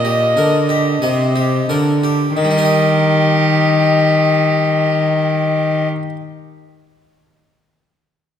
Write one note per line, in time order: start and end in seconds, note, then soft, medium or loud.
0.00 0.33 A#2 soft
0.00 0.38 A#2 medium
0.00 1.69 D#5 soft
0.00 1.69 D#5 medium
0.05 0.39 G4 soft
0.36 1.02 D3 soft
0.36 0.98 D3 soft
0.36 0.71 A#4 soft
0.69 1.04 G4 soft
1.02 1.68 C3 medium
1.02 1.65 C3 soft
1.02 1.37 D#5 soft
1.36 1.71 G4 soft
1.69 2.33 D3 soft
1.69 2.36 D3 soft
1.69 2.05 A#4 soft
2.03 2.37 G4 soft
2.36 5.88 D#3 medium
2.36 5.88 D#3 soft
2.36 5.88 G4 medium
2.36 5.88 D#5 medium
2.44 5.95 G3 soft
2.51 6.02 D#4 medium
2.58 6.09 A#4 soft
2.65 6.16 D#5 soft